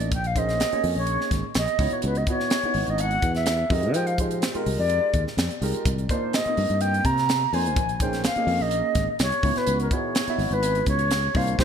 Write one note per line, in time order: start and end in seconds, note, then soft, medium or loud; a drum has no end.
0.00 0.12 A1 medium
0.00 0.12 A#3 medium
0.00 0.12 D4 medium
0.00 0.12 D#4 medium
0.00 0.12 F4 medium
0.00 0.13 D5 medium
0.00 0.13 D#5 medium
0.00 closed hi-hat soft
0.11 0.62 A#1 loud
0.11 0.28 G5 loud
0.11 kick loud
0.11 closed hi-hat medium
0.24 0.40 F5 medium
0.24 closed hi-hat soft
0.35 0.61 A#3 medium
0.35 0.61 C#4 medium
0.35 0.61 D#4 medium
0.35 0.62 G#4 medium
0.35 0.62 C5 medium
0.35 0.97 D#5 medium
0.35 kick medium
0.35 closed hi-hat medium
0.49 snare soft
0.49 closed hi-hat soft
0.60 snare loud
0.60 closed hi-hat medium
0.72 1.40 A#3 medium
0.72 1.41 C#4 medium
0.72 1.41 D#4 medium
0.72 1.41 G#4 medium
0.72 1.41 C#5 medium
0.72 muted fretless electric bass stroke soft
0.72 closed hi-hat soft
0.84 0.94 F2 medium
0.84 open hi-hat medium
0.96 1.16 A#1 medium
0.96 1.31 C#5 medium
1.07 closed hi-hat medium
1.21 snare soft
1.31 1.42 G#1 medium
1.31 kick medium
1.31 snare soft
1.31 closed hi-hat medium
1.54 1.66 A#1 medium
1.54 1.94 D#5 loud
1.54 snare loud
1.54 closed hi-hat medium
1.67 closed hi-hat soft
1.79 1.89 C#2 loud
1.79 2.18 B3 medium
1.79 2.18 D#4 medium
1.79 2.18 E4 medium
1.79 2.18 F#4 medium
1.79 2.18 C#5 medium
1.79 kick loud
1.79 open hi-hat medium
1.91 2.04 C#5 medium
1.91 closed hi-hat soft
2.02 2.23 C#2 loud
2.02 2.19 B4 medium
2.02 closed hi-hat medium
2.15 2.28 D#5 medium
2.15 closed hi-hat soft
2.27 2.53 B3 medium
2.27 2.53 D#4 medium
2.27 2.54 E4 medium
2.27 2.54 F#4 medium
2.27 2.91 C#5 medium
2.27 2.54 D#5 medium
2.27 kick medium
2.27 closed hi-hat medium
2.40 snare soft
2.50 snare loud
2.50 closed hi-hat medium
2.63 3.32 B3 medium
2.63 3.32 D#4 medium
2.63 3.32 E4 medium
2.63 3.32 F#4 medium
2.63 3.33 B4 medium
2.63 muted fretless electric bass stroke soft
2.63 closed hi-hat soft
2.74 2.85 G#1 medium
2.74 open hi-hat medium
2.87 3.17 G#1 medium
2.87 3.02 D#5 medium
2.87 closed hi-hat soft
2.98 3.35 F#5 loud
2.98 closed hi-hat medium
3.11 closed hi-hat soft
3.22 3.62 E2 medium
3.22 kick medium
3.22 closed hi-hat medium
3.35 3.74 E5 medium
3.35 snare soft
3.35 closed hi-hat soft
3.46 snare loud
3.46 closed hi-hat medium
3.70 3.93 F2 medium
3.70 4.09 G#3 medium
3.70 4.09 D#4 medium
3.70 4.09 F4 medium
3.70 4.09 G4 medium
3.70 4.10 A#4 medium
3.70 3.94 D#5 medium
3.70 kick medium
3.70 open hi-hat medium
3.83 closed hi-hat soft
3.93 4.44 F3 loud
3.93 4.08 G5 medium
3.93 closed hi-hat medium
4.06 4.18 F5 medium
4.06 closed hi-hat soft
4.18 4.44 G#3 medium
4.18 4.44 D#4 medium
4.18 4.45 F4 medium
4.18 4.45 G4 medium
4.18 4.45 C5 medium
4.18 kick medium
4.18 closed hi-hat medium
4.31 closed hi-hat soft
4.42 snare loud
4.42 closed hi-hat medium
4.54 5.23 G#3 medium
4.54 5.23 D#4 medium
4.54 5.23 F4 medium
4.54 5.23 G4 medium
4.54 5.24 A#4 medium
4.54 muted fretless electric bass stroke soft
4.54 closed hi-hat soft
4.66 4.77 C2 medium
4.66 open hi-hat medium
4.78 4.98 F2 medium
4.78 5.22 D5 medium
4.90 closed hi-hat medium
5.13 5.24 D#2 medium
5.13 kick medium
5.13 closed hi-hat medium
5.27 snare soft
5.37 5.48 F2 medium
5.37 snare loud
5.37 closed hi-hat medium
5.51 closed hi-hat soft
5.61 5.72 C2 medium
5.61 5.85 G#3 medium
5.61 5.85 D#4 medium
5.61 5.86 F4 medium
5.61 5.86 G4 medium
5.61 5.86 A#4 medium
5.61 open hi-hat medium
5.75 closed hi-hat soft
5.85 6.05 C2 medium
5.85 kick loud
5.85 closed hi-hat medium
5.98 closed hi-hat soft
6.09 6.35 A#3 medium
6.09 6.35 D4 medium
6.09 6.36 D#4 medium
6.09 6.36 F4 medium
6.09 6.36 C5 medium
6.09 kick medium
6.09 closed hi-hat medium
6.33 6.82 D#5 medium
6.33 snare loud
6.33 closed hi-hat medium
6.46 7.14 A#3 medium
6.46 7.14 C4 medium
6.46 7.15 D#4 medium
6.46 7.15 F4 medium
6.46 7.15 D#5 medium
6.46 muted fretless electric bass stroke soft
6.46 closed hi-hat soft
6.57 6.68 G2 medium
6.57 open hi-hat medium
6.70 6.99 G2 medium
6.70 closed hi-hat soft
6.81 7.07 G5 loud
6.81 closed hi-hat medium
6.94 closed hi-hat soft
7.05 7.45 C3 medium
7.05 7.55 A#5 loud
7.05 kick medium
7.05 closed hi-hat medium
7.18 snare soft
7.18 closed hi-hat soft
7.29 snare loud
7.29 closed hi-hat medium
7.53 7.76 F2 medium
7.53 7.77 A#3 medium
7.53 7.77 D4 medium
7.53 7.77 D#4 medium
7.53 7.77 F4 medium
7.53 7.77 C5 medium
7.53 8.04 G#5 medium
7.53 open hi-hat medium
7.66 closed hi-hat soft
7.76 8.27 A#1 loud
7.76 kick loud
7.76 closed hi-hat medium
7.89 closed hi-hat soft
8.00 8.26 A#3 medium
8.00 8.26 C#4 medium
8.00 8.27 D#4 medium
8.00 8.27 G#4 medium
8.00 8.27 C5 medium
8.00 8.24 G5 medium
8.00 kick medium
8.00 closed hi-hat medium
8.13 snare soft
8.13 closed hi-hat soft
8.24 8.63 F5 medium
8.24 snare loud
8.24 closed hi-hat medium
8.36 9.05 A#3 medium
8.36 9.05 C#4 medium
8.36 9.06 D#4 medium
8.36 9.06 G#4 medium
8.36 9.06 D#5 medium
8.36 muted fretless electric bass stroke soft
8.36 closed hi-hat soft
8.47 8.58 F2 medium
8.47 open hi-hat medium
8.61 8.81 A#1 medium
8.61 9.09 D#5 medium
8.71 closed hi-hat medium
8.95 9.06 G#1 medium
8.95 kick medium
8.95 snare soft
8.95 closed hi-hat medium
9.19 9.30 C2 medium
9.19 9.59 C#5 loud
9.19 snare loud
9.19 closed hi-hat medium
9.32 closed hi-hat soft
9.43 9.54 C#2 medium
9.43 9.82 B3 medium
9.43 9.82 D#4 medium
9.43 9.83 E4 medium
9.43 9.83 F#4 medium
9.43 9.83 C#5 medium
9.43 kick medium
9.43 open hi-hat medium
9.56 9.81 B4 medium
9.56 snare soft
9.56 closed hi-hat soft
9.67 9.88 C#2 medium
9.67 closed hi-hat medium
9.80 9.95 A#4 medium
9.80 closed hi-hat soft
9.91 10.17 B3 medium
9.91 10.18 D#4 medium
9.91 10.18 E4 medium
9.91 10.18 F#4 medium
9.91 10.18 G#4 medium
9.91 10.55 C#5 medium
9.91 kick medium
9.91 closed hi-hat medium
10.15 snare loud
10.15 closed hi-hat medium
10.28 10.97 B3 medium
10.28 10.97 E4 medium
10.28 10.98 F#4 medium
10.28 10.97 D#5 medium
10.28 10.98 E5 medium
10.28 muted fretless electric bass stroke soft
10.28 closed hi-hat soft
10.38 10.49 G#1 medium
10.38 open hi-hat medium
10.51 10.81 G#1 loud
10.51 10.88 B4 medium
10.51 closed hi-hat soft
10.63 closed hi-hat medium
10.75 closed hi-hat soft
10.86 11.27 C#2 medium
10.86 11.38 C#5 medium
10.86 kick medium
10.86 closed hi-hat medium
10.99 closed hi-hat soft
11.11 snare loud
11.11 closed hi-hat medium
11.34 11.58 C2 medium
11.34 11.59 A#3 medium
11.34 11.59 D4 medium
11.34 11.57 D#4 medium
11.34 11.60 F4 medium
11.34 11.60 C5 medium
11.34 11.59 F5 medium
11.34 kick medium
11.34 open hi-hat medium
11.47 closed hi-hat soft
11.59 11.64 C2 loud
11.59 11.64 C4 loud
11.59 11.64 D#4 medium
11.59 11.64 G4 medium
11.59 11.64 C5 medium
11.59 kick medium
11.59 snare medium